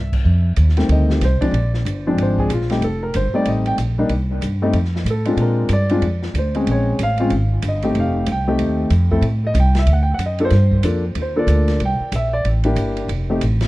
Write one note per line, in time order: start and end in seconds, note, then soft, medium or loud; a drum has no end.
0.00 0.22 C2 medium
0.13 kick medium
0.13 crash medium
0.25 0.56 F2 medium
0.56 0.88 D#2 medium
0.56 hi-hat pedal medium
0.56 ride medium
0.69 snare soft
0.77 1.19 D#3 medium
0.77 1.19 G3 medium
0.77 1.19 A3 medium
0.77 1.19 C4 medium
0.77 snare soft
0.77 ride soft
0.89 1.20 D2 medium
0.89 1.10 D#5 medium
0.89 ride medium
1.10 1.22 G4 medium
1.10 snare soft
1.21 1.39 C2 medium
1.21 1.42 C5 medium
1.21 snare soft
1.21 hi-hat pedal soft
1.21 ride medium
1.41 1.53 F3 medium
1.41 1.52 G#3 medium
1.41 1.53 C4 soft
1.41 1.53 D4 medium
1.41 1.71 D5 medium
1.41 muted upright bass stroke soft
1.41 kick medium
1.41 ride soft
1.51 1.84 A#1 medium
1.51 ride medium
1.74 snare soft
1.85 2.17 G1 medium
1.85 hi-hat pedal medium
1.85 ride medium
2.07 2.48 F3 medium
2.07 2.48 G#3 medium
2.07 2.49 C4 medium
2.07 2.48 D4 medium
2.18 2.49 G#1 medium
2.18 ride medium
2.22 2.39 C5 medium
2.38 2.51 G#4 medium
2.38 kick soft
2.49 2.80 A#1 medium
2.49 2.71 F4 medium
2.49 hi-hat pedal medium
2.49 ride medium
2.61 snare soft
2.70 2.81 G3 medium
2.70 2.81 A3 medium
2.70 2.82 C4 medium
2.70 2.82 D#4 medium
2.70 2.83 G4 medium
2.70 snare soft
2.70 ride soft
2.81 3.13 F1 medium
2.81 3.02 A4 medium
2.81 ride medium
3.03 3.14 A#4 medium
3.14 3.32 G1 medium
3.14 3.34 C5 medium
3.14 hi-hat pedal medium
3.14 ride medium
3.33 3.76 G3 medium
3.33 3.76 A3 medium
3.33 3.76 C4 medium
3.33 3.76 D#4 medium
3.33 3.47 D5 medium
3.33 muted upright bass stroke soft
3.45 3.77 A1 medium
3.45 3.67 D#5 medium
3.45 ride medium
3.66 3.74 G5 medium
3.66 ride soft
3.78 4.09 A#1 medium
3.78 hi-hat pedal medium
3.78 ride medium
3.98 4.09 G3 medium
3.98 4.10 A#3 medium
3.98 4.10 D4 medium
3.98 4.10 D#4 medium
4.09 4.41 C2 medium
4.09 ride medium
4.41 4.73 G2 medium
4.41 hi-hat pedal medium
4.41 ride medium
4.62 4.73 G3 medium
4.62 4.74 A3 medium
4.62 4.74 C4 medium
4.62 4.74 D#4 medium
4.73 5.04 F2 medium
4.73 ride medium
4.85 snare soft
4.96 snare soft
5.05 5.36 A2 medium
5.05 hi-hat pedal soft
5.05 ride medium
5.10 5.39 A4 medium
5.25 5.68 G#3 medium
5.25 5.69 C4 medium
5.25 5.69 D4 medium
5.25 5.69 F4 medium
5.25 ride soft
5.37 5.68 A#2 medium
5.37 ride medium
5.41 5.70 A#4 medium
5.69 6.01 G2 medium
5.69 hi-hat pedal medium
5.69 ride medium
5.73 6.02 D5 medium
5.89 6.02 G#3 medium
5.89 6.02 C4 medium
5.89 6.02 D4 medium
5.89 6.02 F4 medium
5.89 ride soft
6.02 6.33 F2 medium
6.02 ride medium
6.23 snare soft
6.34 6.66 D2 medium
6.34 hi-hat pedal soft
6.34 ride medium
6.38 6.67 C5 medium
6.55 6.97 G#3 medium
6.55 6.97 C4 medium
6.55 6.97 C#4 medium
6.55 6.97 G#4 medium
6.55 ride soft
6.67 6.98 A#1 medium
6.67 ride medium
6.71 6.99 C#5 medium
6.99 7.30 A1 medium
6.99 hi-hat pedal medium
6.99 ride medium
7.03 7.31 F5 medium
7.17 7.30 G#3 medium
7.17 7.31 C4 medium
7.17 7.31 C#4 medium
7.17 7.31 F4 medium
7.17 ride soft
7.30 7.62 G#1 medium
7.30 ride medium
7.62 7.94 G1 medium
7.62 hi-hat pedal soft
7.62 ride medium
7.68 7.96 D#5 medium
7.82 8.25 A3 medium
7.82 8.25 C4 medium
7.82 8.26 D#4 medium
7.82 8.26 G4 medium
7.82 ride soft
7.95 8.26 F1 medium
7.95 ride medium
8.00 8.27 F5 medium
8.26 8.58 C2 medium
8.26 hi-hat pedal medium
8.26 ride medium
8.32 8.60 G5 medium
8.48 8.89 A3 medium
8.48 8.89 C4 medium
8.48 8.90 D#4 medium
8.48 8.90 G4 medium
8.59 8.90 D#2 medium
8.59 ride medium
8.90 9.21 F2 medium
8.90 hi-hat pedal soft
8.90 ride medium
9.11 9.23 A3 medium
9.11 9.23 C4 medium
9.11 9.23 E4 medium
9.11 9.23 A4 medium
9.11 kick medium
9.21 9.54 A2 medium
9.21 ride medium
9.47 9.57 D#5 medium
9.54 9.86 C2 medium
9.54 hi-hat pedal medium
9.54 ride medium
9.60 9.77 G5 medium
9.75 snare medium
9.75 ride soft
9.79 9.89 E5 medium
9.86 10.18 D2 medium
9.86 ride medium
9.93 10.01 F#5 medium
10.03 10.11 G5 medium
10.14 10.22 F#5 medium
10.18 10.50 F#2 medium
10.18 hi-hat pedal medium
10.18 ride medium
10.26 10.42 D#5 medium
10.39 10.51 A#3 medium
10.39 10.51 D4 medium
10.39 10.51 F4 medium
10.39 10.51 A4 medium
10.39 ride soft
10.45 10.84 C5 medium
10.50 10.82 G2 medium
10.50 snare soft
10.50 ride medium
10.71 kick medium
10.83 11.15 F2 medium
10.83 11.02 A#3 medium
10.83 11.02 D4 medium
10.83 11.02 F4 medium
10.83 11.02 A4 medium
10.83 hi-hat pedal medium
10.83 ride medium
11.15 11.46 D#2 medium
11.15 ride medium
11.22 11.38 C5 medium
11.36 11.78 A#3 medium
11.36 11.78 D4 medium
11.36 11.78 F4 medium
11.36 11.78 A4 medium
11.36 11.79 D5 medium
11.47 11.79 D2 medium
11.47 hi-hat pedal medium
11.47 ride medium
11.68 snare soft
11.68 ride soft
11.80 11.99 C2 medium
11.80 ride medium
11.85 12.13 G5 medium
12.00 muted upright bass stroke soft
12.12 12.43 A#1 medium
12.12 12.33 E5 medium
12.12 hi-hat pedal medium
12.12 ride medium
12.33 12.45 D5 medium
12.45 12.75 A1 medium
12.45 ride medium
12.64 13.07 A#3 medium
12.64 13.07 D4 medium
12.64 13.07 E4 medium
12.64 13.07 G4 medium
12.64 ride soft
12.76 13.07 G1 medium
12.76 hi-hat pedal soft
12.76 ride medium
12.97 ride soft
13.08 13.40 F1 medium
13.08 ride medium
13.30 13.40 A3 medium
13.30 13.40 C4 medium
13.30 13.41 D#4 medium
13.30 13.41 G4 medium
13.41 13.68 A1 medium
13.41 hi-hat pedal medium
13.41 ride medium
13.61 snare medium
13.61 ride soft